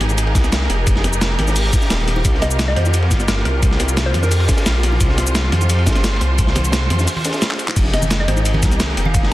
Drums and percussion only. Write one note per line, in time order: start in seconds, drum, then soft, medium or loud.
0.01 snare medium
0.01 closed hi-hat medium
0.01 ride medium
0.01 high conga medium
0.09 ride soft
0.09 high bongo medium
0.09 cabasa soft
0.18 closed hi-hat medium
0.18 ride medium
0.18 cabasa soft
0.27 ride soft
0.35 kick loud
0.35 snare soft
0.35 closed hi-hat medium
0.35 ride medium
0.35 high bongo soft
0.35 cabasa medium
0.44 snare soft
0.44 cabasa soft
0.52 snare loud
0.52 closed hi-hat medium
0.52 ride medium
0.52 cabasa soft
0.61 snare medium
0.70 snare soft
0.70 closed hi-hat medium
0.70 ride medium
0.87 kick loud
0.87 closed hi-hat medium
0.87 ride medium
0.87 cabasa soft
0.96 snare soft
1.04 snare medium
1.04 closed hi-hat medium
1.04 ride medium
1.04 cabasa soft
1.13 cabasa medium
1.21 snare loud
1.21 closed hi-hat medium
1.21 ride medium
1.21 cabasa soft
1.39 snare soft
1.39 closed hi-hat medium
1.39 ride medium
1.39 high conga medium
1.47 snare soft
1.47 high bongo medium
1.47 cabasa soft
1.56 closed hi-hat medium
1.56 open hi-hat medium
1.56 cabasa soft
1.66 ride soft
1.73 kick loud
1.73 closed hi-hat medium
1.73 ride medium
1.73 high bongo soft
1.73 cabasa medium
1.82 snare soft
1.82 cabasa soft
1.90 snare loud
1.90 closed hi-hat medium
1.90 ride medium
1.90 cabasa soft
2.00 ride soft
2.08 snare soft
2.08 closed hi-hat medium
2.08 ride medium
2.16 high bongo medium
2.25 kick loud
2.25 closed hi-hat medium
2.25 ride medium
2.25 cabasa medium
2.34 snare soft
2.42 snare medium
2.42 closed hi-hat medium
2.42 ride medium
2.42 cabasa soft
2.51 cabasa medium
2.59 snare loud
2.59 closed hi-hat medium
2.59 ride medium
2.59 cabasa soft
2.76 snare soft
2.76 closed hi-hat medium
2.76 ride medium
2.76 high conga medium
2.85 ride soft
2.85 high bongo medium
2.85 cabasa soft
2.94 closed hi-hat medium
2.94 ride medium
2.94 cabasa soft
3.02 ride soft
3.11 kick loud
3.11 snare soft
3.11 closed hi-hat medium
3.11 ride medium
3.11 high bongo soft
3.11 cabasa medium
3.20 snare soft
3.20 cabasa soft
3.28 snare loud
3.28 closed hi-hat medium
3.28 ride medium
3.28 cabasa soft
3.38 snare medium
3.45 snare soft
3.45 closed hi-hat medium
3.45 ride medium
3.63 kick loud
3.63 closed hi-hat medium
3.63 ride medium
3.63 cabasa medium
3.71 snare soft
3.80 snare medium
3.80 closed hi-hat medium
3.80 ride medium
3.80 cabasa soft
3.88 ride soft
3.88 cabasa medium
3.97 snare loud
3.97 closed hi-hat medium
3.97 ride medium
3.97 cabasa medium
4.14 snare soft
4.14 closed hi-hat medium
4.14 ride medium
4.14 high conga medium
4.23 snare soft
4.23 high bongo soft
4.23 cabasa soft
4.31 closed hi-hat medium
4.31 open hi-hat medium
4.31 cabasa medium
4.40 ride soft
4.48 kick loud
4.48 snare loud
4.48 closed hi-hat medium
4.48 ride medium
4.48 high bongo soft
4.48 cabasa medium
4.57 snare loud
4.57 ride medium
4.57 cabasa soft
4.66 snare loud
4.66 closed hi-hat medium
4.66 ride medium
4.66 cabasa medium
4.74 ride soft
4.83 snare soft
4.83 closed hi-hat medium
4.83 ride medium
4.92 high bongo medium
5.00 kick loud
5.00 closed hi-hat loud
5.00 ride medium
5.00 cabasa medium
5.09 snare medium
5.18 snare medium
5.18 closed hi-hat medium
5.18 ride medium
5.18 cabasa soft
5.27 cabasa medium
5.35 snare loud
5.35 closed hi-hat loud
5.35 ride medium
5.35 cabasa medium
5.52 snare soft
5.52 closed hi-hat medium
5.52 ride medium
5.52 high conga medium
5.61 ride soft
5.61 high bongo soft
5.61 cabasa soft
5.70 closed hi-hat medium
5.70 ride loud
5.70 cabasa medium
5.78 ride soft
5.86 kick loud
5.86 snare loud
5.86 snare soft
5.86 closed hi-hat medium
5.86 ride medium
5.86 high bongo soft
5.86 cabasa medium
5.91 snare medium
5.91 ride medium
5.95 snare loud
5.95 snare soft
5.95 ride medium
5.95 cabasa soft
6.04 snare loud
6.04 closed hi-hat medium
6.04 ride medium
6.04 cabasa medium
6.14 snare medium
6.21 snare soft
6.21 closed hi-hat medium
6.21 ride medium
6.38 kick loud
6.38 closed hi-hat loud
6.38 ride medium
6.38 cabasa medium
6.46 snare soft
6.55 snare medium
6.55 closed hi-hat medium
6.55 ride medium
6.55 high conga medium
6.55 cabasa soft
6.65 ride soft
6.65 cabasa medium
6.72 snare loud
6.72 closed hi-hat loud
6.72 ride medium
6.72 cabasa medium
6.90 snare soft
6.90 closed hi-hat medium
6.90 ride medium
6.90 high conga medium
6.99 snare soft
6.99 high bongo soft
6.99 cabasa soft
7.07 closed hi-hat loud
7.07 open hi-hat medium
7.07 cabasa medium
7.16 ride soft
7.16 high conga medium
7.24 snare loud
7.24 closed hi-hat medium
7.24 ride medium
7.24 high bongo soft
7.24 cabasa medium
7.33 snare loud
7.33 ride medium
7.33 cabasa soft
7.42 snare loud
7.42 closed hi-hat loud
7.42 ride medium
7.42 cabasa medium
7.50 snare loud
7.50 clap medium
7.50 ride medium
7.59 closed hi-hat medium
7.59 ride medium
7.59 cabasa soft
7.68 clap loud
7.68 high bongo medium
7.76 kick loud
7.76 closed hi-hat loud
7.76 crash loud
7.76 ride loud
7.76 cabasa soft
7.85 snare medium
7.93 snare medium
7.93 closed hi-hat medium
7.93 ride medium
7.93 cabasa soft
8.02 high conga loud
8.02 cabasa medium
8.10 snare loud
8.10 closed hi-hat loud
8.10 ride medium
8.10 cabasa soft
8.28 snare medium
8.28 closed hi-hat medium
8.28 ride medium
8.28 high conga medium
8.37 ride soft
8.37 high bongo medium
8.37 cabasa soft
8.45 closed hi-hat loud
8.45 ride medium
8.45 cabasa soft
8.54 ride soft
8.54 high conga medium
8.62 kick loud
8.62 snare soft
8.62 closed hi-hat medium
8.62 ride medium
8.62 high bongo soft
8.62 cabasa medium
8.72 snare soft
8.72 cabasa soft
8.80 snare loud
8.80 closed hi-hat loud
8.80 ride medium
8.80 high conga medium
8.80 cabasa soft
8.89 snare medium
8.97 snare soft
8.97 closed hi-hat medium
8.97 ride medium
9.05 high conga loud
9.14 kick loud
9.14 closed hi-hat loud
9.14 ride medium
9.14 cabasa soft
9.23 snare soft